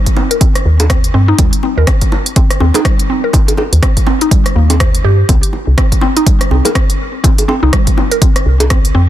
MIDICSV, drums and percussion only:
0, 0, Header, 1, 2, 480
1, 0, Start_track
1, 0, Tempo, 487805
1, 1365, Time_signature, 4, 2, 24, 8
1, 8946, End_track
2, 0, Start_track
2, 0, Title_t, "Drums"
2, 63, Note_on_c, 9, 42, 44
2, 64, Note_on_c, 9, 36, 60
2, 162, Note_off_c, 9, 36, 0
2, 162, Note_off_c, 9, 42, 0
2, 163, Note_on_c, 9, 61, 96
2, 261, Note_off_c, 9, 61, 0
2, 304, Note_on_c, 9, 42, 30
2, 402, Note_off_c, 9, 42, 0
2, 403, Note_on_c, 9, 42, 67
2, 404, Note_on_c, 9, 36, 118
2, 501, Note_off_c, 9, 42, 0
2, 502, Note_off_c, 9, 36, 0
2, 546, Note_on_c, 9, 37, 62
2, 546, Note_on_c, 9, 42, 44
2, 644, Note_off_c, 9, 37, 0
2, 644, Note_off_c, 9, 42, 0
2, 785, Note_on_c, 9, 42, 30
2, 786, Note_on_c, 9, 60, 106
2, 883, Note_off_c, 9, 42, 0
2, 884, Note_on_c, 9, 36, 118
2, 885, Note_off_c, 9, 60, 0
2, 885, Note_on_c, 9, 37, 104
2, 885, Note_on_c, 9, 42, 63
2, 982, Note_off_c, 9, 36, 0
2, 984, Note_off_c, 9, 37, 0
2, 984, Note_off_c, 9, 42, 0
2, 1024, Note_on_c, 9, 42, 42
2, 1123, Note_off_c, 9, 42, 0
2, 1363, Note_on_c, 9, 42, 59
2, 1364, Note_on_c, 9, 36, 118
2, 1367, Note_on_c, 9, 61, 90
2, 1461, Note_off_c, 9, 42, 0
2, 1462, Note_off_c, 9, 36, 0
2, 1466, Note_off_c, 9, 61, 0
2, 1504, Note_on_c, 9, 42, 42
2, 1602, Note_off_c, 9, 42, 0
2, 1603, Note_on_c, 9, 61, 58
2, 1702, Note_off_c, 9, 61, 0
2, 1842, Note_on_c, 9, 37, 105
2, 1842, Note_on_c, 9, 42, 61
2, 1844, Note_on_c, 9, 36, 123
2, 1940, Note_off_c, 9, 37, 0
2, 1940, Note_off_c, 9, 42, 0
2, 1943, Note_off_c, 9, 36, 0
2, 1982, Note_on_c, 9, 42, 43
2, 1985, Note_on_c, 9, 36, 60
2, 2081, Note_off_c, 9, 42, 0
2, 2083, Note_off_c, 9, 36, 0
2, 2086, Note_on_c, 9, 61, 86
2, 2185, Note_off_c, 9, 61, 0
2, 2226, Note_on_c, 9, 42, 30
2, 2324, Note_off_c, 9, 42, 0
2, 2324, Note_on_c, 9, 42, 63
2, 2325, Note_on_c, 9, 36, 118
2, 2422, Note_off_c, 9, 42, 0
2, 2423, Note_off_c, 9, 36, 0
2, 2465, Note_on_c, 9, 37, 63
2, 2465, Note_on_c, 9, 42, 43
2, 2562, Note_on_c, 9, 60, 73
2, 2563, Note_off_c, 9, 37, 0
2, 2563, Note_off_c, 9, 42, 0
2, 2660, Note_off_c, 9, 60, 0
2, 2700, Note_on_c, 9, 61, 100
2, 2706, Note_on_c, 9, 42, 29
2, 2708, Note_on_c, 9, 60, 106
2, 2798, Note_off_c, 9, 61, 0
2, 2804, Note_off_c, 9, 42, 0
2, 2804, Note_on_c, 9, 36, 122
2, 2806, Note_off_c, 9, 60, 0
2, 2806, Note_on_c, 9, 37, 104
2, 2806, Note_on_c, 9, 42, 62
2, 2903, Note_off_c, 9, 36, 0
2, 2905, Note_off_c, 9, 37, 0
2, 2905, Note_off_c, 9, 42, 0
2, 2947, Note_on_c, 9, 42, 41
2, 3045, Note_off_c, 9, 42, 0
2, 3280, Note_on_c, 9, 61, 88
2, 3285, Note_on_c, 9, 36, 118
2, 3286, Note_on_c, 9, 42, 60
2, 3378, Note_off_c, 9, 61, 0
2, 3383, Note_off_c, 9, 36, 0
2, 3385, Note_off_c, 9, 42, 0
2, 3426, Note_on_c, 9, 60, 79
2, 3428, Note_on_c, 9, 42, 41
2, 3517, Note_on_c, 9, 61, 63
2, 3524, Note_off_c, 9, 60, 0
2, 3524, Note_on_c, 9, 60, 100
2, 3526, Note_off_c, 9, 42, 0
2, 3615, Note_off_c, 9, 61, 0
2, 3623, Note_off_c, 9, 60, 0
2, 3667, Note_on_c, 9, 42, 28
2, 3765, Note_off_c, 9, 42, 0
2, 3765, Note_on_c, 9, 36, 125
2, 3765, Note_on_c, 9, 37, 102
2, 3765, Note_on_c, 9, 42, 60
2, 3863, Note_off_c, 9, 36, 0
2, 3864, Note_off_c, 9, 37, 0
2, 3864, Note_off_c, 9, 42, 0
2, 3905, Note_on_c, 9, 36, 61
2, 3905, Note_on_c, 9, 42, 42
2, 4001, Note_on_c, 9, 61, 91
2, 4003, Note_off_c, 9, 36, 0
2, 4003, Note_off_c, 9, 42, 0
2, 4099, Note_off_c, 9, 61, 0
2, 4145, Note_on_c, 9, 42, 29
2, 4243, Note_off_c, 9, 42, 0
2, 4244, Note_on_c, 9, 36, 119
2, 4246, Note_on_c, 9, 42, 62
2, 4343, Note_off_c, 9, 36, 0
2, 4344, Note_off_c, 9, 42, 0
2, 4386, Note_on_c, 9, 37, 63
2, 4386, Note_on_c, 9, 42, 41
2, 4485, Note_off_c, 9, 37, 0
2, 4485, Note_off_c, 9, 42, 0
2, 4624, Note_on_c, 9, 42, 29
2, 4625, Note_on_c, 9, 60, 91
2, 4723, Note_off_c, 9, 42, 0
2, 4723, Note_off_c, 9, 60, 0
2, 4725, Note_on_c, 9, 36, 118
2, 4725, Note_on_c, 9, 37, 104
2, 4725, Note_on_c, 9, 42, 61
2, 4823, Note_off_c, 9, 36, 0
2, 4823, Note_off_c, 9, 37, 0
2, 4823, Note_off_c, 9, 42, 0
2, 4866, Note_on_c, 9, 42, 40
2, 4965, Note_off_c, 9, 42, 0
2, 5205, Note_on_c, 9, 36, 114
2, 5205, Note_on_c, 9, 42, 60
2, 5205, Note_on_c, 9, 61, 83
2, 5303, Note_off_c, 9, 36, 0
2, 5303, Note_off_c, 9, 42, 0
2, 5303, Note_off_c, 9, 61, 0
2, 5345, Note_on_c, 9, 42, 41
2, 5440, Note_on_c, 9, 61, 58
2, 5443, Note_off_c, 9, 42, 0
2, 5538, Note_off_c, 9, 61, 0
2, 5685, Note_on_c, 9, 36, 118
2, 5685, Note_on_c, 9, 37, 96
2, 5685, Note_on_c, 9, 42, 60
2, 5783, Note_off_c, 9, 36, 0
2, 5784, Note_off_c, 9, 37, 0
2, 5784, Note_off_c, 9, 42, 0
2, 5825, Note_on_c, 9, 36, 57
2, 5826, Note_on_c, 9, 42, 42
2, 5918, Note_on_c, 9, 61, 92
2, 5923, Note_off_c, 9, 36, 0
2, 5925, Note_off_c, 9, 42, 0
2, 6016, Note_off_c, 9, 61, 0
2, 6067, Note_on_c, 9, 42, 28
2, 6165, Note_off_c, 9, 42, 0
2, 6165, Note_on_c, 9, 36, 115
2, 6165, Note_on_c, 9, 42, 63
2, 6263, Note_off_c, 9, 36, 0
2, 6264, Note_off_c, 9, 42, 0
2, 6306, Note_on_c, 9, 37, 61
2, 6306, Note_on_c, 9, 42, 42
2, 6405, Note_off_c, 9, 37, 0
2, 6405, Note_off_c, 9, 42, 0
2, 6406, Note_on_c, 9, 60, 64
2, 6505, Note_off_c, 9, 60, 0
2, 6542, Note_on_c, 9, 60, 91
2, 6547, Note_on_c, 9, 42, 29
2, 6548, Note_on_c, 9, 61, 82
2, 6641, Note_off_c, 9, 60, 0
2, 6645, Note_on_c, 9, 36, 113
2, 6646, Note_off_c, 9, 42, 0
2, 6646, Note_off_c, 9, 61, 0
2, 6647, Note_on_c, 9, 37, 102
2, 6647, Note_on_c, 9, 42, 60
2, 6743, Note_off_c, 9, 36, 0
2, 6745, Note_off_c, 9, 37, 0
2, 6745, Note_off_c, 9, 42, 0
2, 6787, Note_on_c, 9, 42, 42
2, 6885, Note_off_c, 9, 42, 0
2, 7124, Note_on_c, 9, 61, 92
2, 7125, Note_on_c, 9, 36, 111
2, 7127, Note_on_c, 9, 42, 60
2, 7223, Note_off_c, 9, 36, 0
2, 7223, Note_off_c, 9, 61, 0
2, 7226, Note_off_c, 9, 42, 0
2, 7266, Note_on_c, 9, 42, 44
2, 7267, Note_on_c, 9, 60, 75
2, 7364, Note_off_c, 9, 42, 0
2, 7366, Note_off_c, 9, 60, 0
2, 7367, Note_on_c, 9, 60, 102
2, 7367, Note_on_c, 9, 61, 55
2, 7465, Note_off_c, 9, 60, 0
2, 7466, Note_off_c, 9, 61, 0
2, 7606, Note_on_c, 9, 36, 110
2, 7606, Note_on_c, 9, 37, 96
2, 7606, Note_on_c, 9, 42, 62
2, 7704, Note_off_c, 9, 36, 0
2, 7704, Note_off_c, 9, 37, 0
2, 7704, Note_off_c, 9, 42, 0
2, 7745, Note_on_c, 9, 42, 42
2, 7746, Note_on_c, 9, 36, 55
2, 7843, Note_off_c, 9, 42, 0
2, 7844, Note_off_c, 9, 36, 0
2, 7848, Note_on_c, 9, 61, 83
2, 7947, Note_off_c, 9, 61, 0
2, 7985, Note_on_c, 9, 42, 29
2, 8083, Note_off_c, 9, 42, 0
2, 8085, Note_on_c, 9, 36, 109
2, 8085, Note_on_c, 9, 42, 66
2, 8184, Note_off_c, 9, 36, 0
2, 8184, Note_off_c, 9, 42, 0
2, 8225, Note_on_c, 9, 37, 58
2, 8225, Note_on_c, 9, 42, 44
2, 8323, Note_off_c, 9, 37, 0
2, 8323, Note_off_c, 9, 42, 0
2, 8464, Note_on_c, 9, 60, 107
2, 8465, Note_on_c, 9, 42, 30
2, 8562, Note_off_c, 9, 60, 0
2, 8563, Note_off_c, 9, 42, 0
2, 8564, Note_on_c, 9, 37, 98
2, 8564, Note_on_c, 9, 42, 63
2, 8565, Note_on_c, 9, 36, 115
2, 8662, Note_off_c, 9, 37, 0
2, 8662, Note_off_c, 9, 42, 0
2, 8664, Note_off_c, 9, 36, 0
2, 8706, Note_on_c, 9, 42, 43
2, 8804, Note_off_c, 9, 42, 0
2, 8946, End_track
0, 0, End_of_file